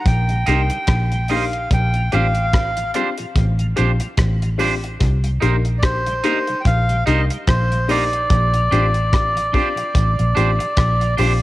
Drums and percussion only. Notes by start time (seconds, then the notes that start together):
0.06 kick, closed hi-hat
0.29 closed hi-hat
0.47 closed hi-hat
0.70 closed hi-hat
0.87 kick, cross-stick, closed hi-hat
1.12 closed hi-hat
1.28 open hi-hat
1.53 closed hi-hat
1.71 kick, closed hi-hat
1.94 closed hi-hat
2.12 closed hi-hat
2.35 closed hi-hat
2.53 kick, cross-stick, closed hi-hat
2.77 closed hi-hat
2.94 closed hi-hat
3.17 closed hi-hat
3.36 kick, closed hi-hat
3.59 closed hi-hat
3.77 closed hi-hat
4.00 closed hi-hat
4.18 kick, cross-stick, closed hi-hat
4.42 closed hi-hat
4.59 open hi-hat
4.84 closed hi-hat
5.00 kick, closed hi-hat
5.24 closed hi-hat
5.42 closed hi-hat
5.65 closed hi-hat
5.83 kick, cross-stick, closed hi-hat
6.07 closed hi-hat
6.24 closed hi-hat
6.47 closed hi-hat
6.65 kick, closed hi-hat
6.89 closed hi-hat
7.07 closed hi-hat
7.30 closed hi-hat
7.47 kick, cross-stick, closed hi-hat
7.72 closed hi-hat
7.89 open hi-hat
8.13 closed hi-hat
8.30 kick, closed hi-hat
8.54 closed hi-hat
8.72 closed hi-hat
8.94 closed hi-hat
9.13 kick, cross-stick, closed hi-hat
9.37 closed hi-hat
9.54 kick, closed hi-hat
9.77 closed hi-hat
9.95 kick, closed hi-hat
10.19 closed hi-hat
10.37 closed hi-hat
10.60 closed hi-hat
10.77 kick, cross-stick, closed hi-hat
11.01 closed hi-hat
11.18 open hi-hat